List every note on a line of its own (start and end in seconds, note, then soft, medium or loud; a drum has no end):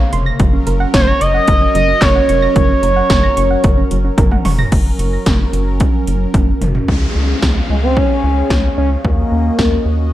0.00 0.36 C3 medium
0.00 0.36 C#3 medium
0.00 0.36 A#3 medium
0.00 0.13 F5 loud
0.13 0.32 F1 medium
0.13 0.20 C6 medium
0.13 closed hi-hat medium
0.26 0.33 A#6 loud
0.40 0.59 F#1 loud
0.40 0.47 F#3 medium
0.40 4.68 F#3 medium
0.40 4.68 C#4 medium
0.40 4.68 A#4 loud
0.40 kick loud
0.40 closed hi-hat medium
0.53 0.60 C#4 medium
0.67 0.86 F#1 loud
0.67 0.74 A#4 medium
0.67 closed hi-hat medium
0.80 0.87 F#5 loud
0.94 1.13 F#1 loud
0.94 1.02 C#5 loud
0.94 1.01 C#6 medium
0.94 kick loud
0.94 snare loud
0.94 closed hi-hat medium
1.00 1.09 C5 medium
1.07 1.22 C#5 loud
1.07 1.14 A#6 medium
1.21 1.40 F#1 medium
1.21 1.74 D#5 loud
1.21 1.28 C#6 loud
1.21 closed hi-hat medium
1.34 1.41 F#5 medium
1.48 1.67 F#1 loud
1.48 1.55 A#4 medium
1.48 kick loud
1.48 closed hi-hat medium
1.61 1.68 C#4 loud
1.75 1.94 F#1 medium
1.75 1.82 F#3 medium
1.75 2.03 D#5 loud
1.75 closed hi-hat medium
1.88 1.95 C#4 medium
2.02 2.21 F#1 loud
2.02 2.09 A#4 loud
2.02 2.55 C#5 loud
2.02 kick loud
2.02 snare loud
2.02 clap loud
2.02 closed hi-hat medium
2.15 2.23 F#5 medium
2.29 2.48 F1 medium
2.29 2.36 C#6 medium
2.29 closed hi-hat medium
2.42 2.49 A#6 loud
2.56 2.75 F#1 loud
2.56 2.63 F#3 medium
2.56 4.14 C#5 loud
2.56 kick loud
2.56 closed hi-hat medium
2.69 2.76 C#4 medium
2.83 3.02 F#1 medium
2.83 2.90 A#4 medium
2.83 closed hi-hat medium
2.96 3.03 F#5 medium
3.10 3.29 F#1 loud
3.10 3.17 C#6 medium
3.10 kick loud
3.10 snare loud
3.10 closed hi-hat medium
3.23 3.30 A#6 medium
3.37 3.56 F#1 loud
3.37 3.44 C#6 loud
3.37 closed hi-hat medium
3.51 3.58 F#5 medium
3.64 3.83 F#1 loud
3.64 3.71 A#4 medium
3.64 kick loud
3.64 closed hi-hat medium
3.77 3.85 C#4 medium
3.91 4.10 F#1 loud
3.91 3.98 F#3 medium
3.91 closed hi-hat medium
4.05 4.12 C#4 medium
4.18 4.37 F#1 loud
4.18 4.25 A#4 medium
4.18 kick loud
4.18 closed hi-hat medium
4.18 high tom medium
4.31 4.39 F#5 medium
4.31 mid tom medium
4.45 4.64 F1 medium
4.45 4.52 C#6 medium
4.45 mid tom medium
4.45 open hi-hat medium
4.58 4.66 A#6 loud
4.58 floor tom loud
4.72 4.91 F#1 loud
4.72 6.86 F#3 medium
4.72 6.86 C#4 medium
4.72 6.86 A#4 medium
4.72 kick loud
4.72 closed hi-hat medium
4.72 crash medium
4.99 5.18 F#1 loud
4.99 closed hi-hat medium
5.26 5.45 F#1 loud
5.26 kick loud
5.26 snare loud
5.26 closed hi-hat medium
5.53 5.81 F#1 loud
5.53 closed hi-hat medium
5.80 kick loud
5.80 closed hi-hat medium
6.07 6.26 F#1 loud
6.07 closed hi-hat medium
6.34 6.53 F#1 loud
6.34 kick loud
6.34 closed hi-hat medium
6.34 high tom medium
6.61 6.80 F#1 loud
6.61 closed hi-hat medium
6.61 mid tom medium
6.75 floor tom medium
6.88 7.07 C#2 loud
6.88 10.13 C#4 medium
6.88 9.03 G#4 medium
6.88 9.03 F5 medium
6.88 kick loud
6.88 downlifter medium
7.15 7.34 C#2 medium
7.42 7.61 C#2 medium
7.42 kick loud
7.42 snare loud
7.70 7.98 C#2 medium
7.70 7.76 G#3 medium
7.83 7.98 C4 loud
7.97 8.77 C#4 loud
7.97 kick loud
8.24 8.43 C#2 loud
8.50 8.69 C#2 loud
8.50 kick loud
8.50 snare loud
8.78 8.97 C#2 medium
8.78 8.90 C#4 loud
9.05 9.24 D#2 loud
9.05 10.09 A#3 medium
9.05 10.13 F#4 medium
9.05 10.13 D#5 medium
9.05 kick loud
9.32 9.51 D#2 loud
9.59 9.78 D#2 loud
9.59 kick loud
9.59 snare loud
9.85 10.13 D#2 loud